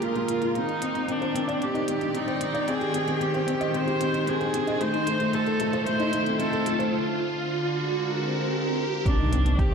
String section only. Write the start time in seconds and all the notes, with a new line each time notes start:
Already playing: D3 G#3 F4 A#4
0.55 D#3
1.20 G5
1.37 C4
1.51 D5
3.33 G#3
3.64 C5
5.22 F4
5.46 A3
6.92 D3
7.74 G#3
7.89 A#4
9.06 D#3
9.20 D5
9.35 G5
9.43 C5